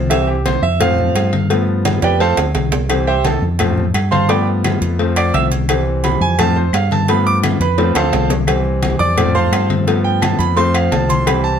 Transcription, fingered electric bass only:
0, 0, Header, 1, 2, 480
1, 0, Start_track
1, 0, Tempo, 348837
1, 143, Time_signature, 4, 2, 24, 8
1, 15953, End_track
2, 0, Start_track
2, 0, Title_t, "Fingered electric bass"
2, 0, Program_c, 0, 33
2, 0, Note_on_c, 0, 36, 92
2, 782, Note_off_c, 0, 36, 0
2, 857, Note_on_c, 0, 41, 98
2, 1531, Note_off_c, 0, 41, 0
2, 1580, Note_on_c, 0, 43, 92
2, 2705, Note_off_c, 0, 43, 0
2, 2779, Note_on_c, 0, 41, 101
2, 3230, Note_off_c, 0, 41, 0
2, 3263, Note_on_c, 0, 38, 74
2, 3489, Note_off_c, 0, 38, 0
2, 3505, Note_on_c, 0, 36, 86
2, 4629, Note_off_c, 0, 36, 0
2, 4703, Note_on_c, 0, 41, 96
2, 5376, Note_off_c, 0, 41, 0
2, 5419, Note_on_c, 0, 43, 92
2, 6546, Note_off_c, 0, 43, 0
2, 6623, Note_on_c, 0, 41, 94
2, 7296, Note_off_c, 0, 41, 0
2, 7347, Note_on_c, 0, 36, 94
2, 8470, Note_off_c, 0, 36, 0
2, 8540, Note_on_c, 0, 41, 107
2, 9215, Note_off_c, 0, 41, 0
2, 9259, Note_on_c, 0, 43, 94
2, 10385, Note_off_c, 0, 43, 0
2, 10458, Note_on_c, 0, 41, 99
2, 10910, Note_off_c, 0, 41, 0
2, 10944, Note_on_c, 0, 38, 73
2, 11170, Note_off_c, 0, 38, 0
2, 11182, Note_on_c, 0, 36, 93
2, 12306, Note_off_c, 0, 36, 0
2, 12376, Note_on_c, 0, 41, 98
2, 13052, Note_off_c, 0, 41, 0
2, 13090, Note_on_c, 0, 43, 94
2, 14220, Note_off_c, 0, 43, 0
2, 14295, Note_on_c, 0, 41, 100
2, 14970, Note_off_c, 0, 41, 0
2, 15023, Note_on_c, 0, 36, 87
2, 15953, Note_off_c, 0, 36, 0
2, 15953, End_track
0, 0, End_of_file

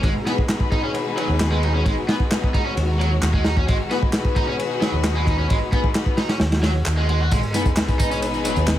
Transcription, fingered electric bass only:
0, 0, Header, 1, 2, 480
1, 0, Start_track
1, 0, Tempo, 454545
1, 45, Time_signature, 4, 2, 24, 8
1, 9278, End_track
2, 0, Start_track
2, 0, Title_t, "Fingered electric bass"
2, 0, Program_c, 0, 33
2, 37, Note_on_c, 0, 32, 99
2, 129, Note_off_c, 0, 32, 0
2, 1364, Note_on_c, 0, 39, 85
2, 1910, Note_off_c, 0, 39, 0
2, 1962, Note_on_c, 0, 32, 99
2, 2051, Note_off_c, 0, 32, 0
2, 2926, Note_on_c, 0, 39, 79
2, 3352, Note_off_c, 0, 39, 0
2, 3401, Note_on_c, 0, 39, 97
2, 3830, Note_off_c, 0, 39, 0
2, 3894, Note_on_c, 0, 32, 101
2, 3977, Note_off_c, 0, 32, 0
2, 5210, Note_on_c, 0, 39, 85
2, 5753, Note_off_c, 0, 39, 0
2, 5814, Note_on_c, 0, 32, 101
2, 5898, Note_off_c, 0, 32, 0
2, 6764, Note_on_c, 0, 39, 83
2, 7191, Note_off_c, 0, 39, 0
2, 7247, Note_on_c, 0, 39, 98
2, 7673, Note_off_c, 0, 39, 0
2, 7728, Note_on_c, 0, 32, 102
2, 7815, Note_off_c, 0, 32, 0
2, 9046, Note_on_c, 0, 39, 87
2, 9278, Note_off_c, 0, 39, 0
2, 9278, End_track
0, 0, End_of_file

